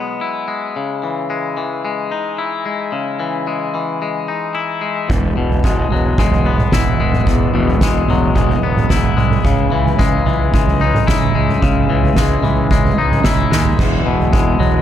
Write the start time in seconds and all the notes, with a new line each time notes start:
Already playing: B2 F#3 G#3 B3
0.21 E4
0.48 G#3
0.76 C#3
1.03 E3
1.30 G#3
1.57 E3
1.85 G#3
2.11 D#4
2.38 E4
2.66 G#3
2.92 C#3
3.20 E3
3.47 G#3
3.74 E3
4.02 G#3
4.28 D#4
4.55 E4
4.81 G#3
5.09 E1 E2, kick, floor tom
5.37 E1 B2
5.50 floor tom
5.64 E1 G#3, kick
5.91 E1 F#3, floor tom
6.18 E1 G#3, kick
6.31 floor tom
6.46 B3
6.58 mid tom
6.72 E1 E4, kick, snare, floor tom
7.00 E1 G#3
7.13 mid tom
7.27 E1 E2, kick, floor tom
7.54 E1 B2
7.67 floor tom
7.81 E1 G#3, kick, snare
8.08 E1 F#3, floor tom, mid tom
8.35 E1 G#3, kick
8.49 floor tom
8.63 E1 B3
8.77 mid tom
8.90 E1 E4, kick, snare, floor tom
9.17 C2 G#3, mid tom
9.31 mid tom
9.45 C#2 C#3, kick, floor tom
9.72 C#2 E3
9.86 floor tom
9.99 C#2 G#3, kick
10.26 C#2 E3, floor tom
10.54 C#2 G#3, kick
10.67 floor tom
10.81 D#4
10.95 mid tom
11.07 C#2 E4, kick, snare, floor tom
11.35 C#2 G#3
11.49 mid tom
11.62 C#2 C#3, kick, floor tom
11.90 C#2 E3
12.03 floor tom
12.16 C#2 G#3, kick, snare
12.43 C#2 E3, floor tom, mid tom
12.71 C#2 G#3, kick
12.85 floor tom
12.97 C#2 D#4
13.11 mid tom
13.24 C#2 E4, kick, snare, floor tom
13.51 D#2 G#3, snare
13.65 floor tom
13.79 E1 E2, kick, floor tom, splash
14.06 E1 B2
14.20 floor tom
14.33 E1 G#3, kick
14.60 E1 F#3, floor tom